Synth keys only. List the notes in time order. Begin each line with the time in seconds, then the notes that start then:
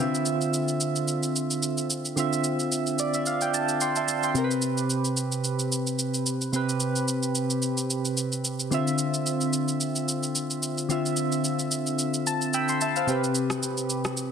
0.00 D3 C4 F4 E5
2.16 D3 C4 F4 E5
3.00 D5
3.15 E5
3.27 F5
3.42 G5
3.54 A5
3.81 D5 G5 C6
3.96 E5 A5
4.24 G5 C6
4.34 C3 C4 G4 A#4
4.44 B4
6.52 C3 C4 G4 B4
8.71 D3 C4 F4 E5
10.89 D3 C4 F4 E5
12.27 A5
12.54 G5 B5 E6
12.69 G5 C6
12.81 E5 A5
12.96 C5 F5
13.07 C3 C4 G4 B4